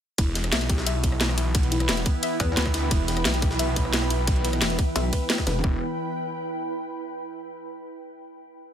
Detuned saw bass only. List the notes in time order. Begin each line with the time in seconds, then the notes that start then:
0.18 E1
0.53 B1
1.89 E1
2.57 D2
2.91 E1
3.25 B1
4.62 E1
5.64 E1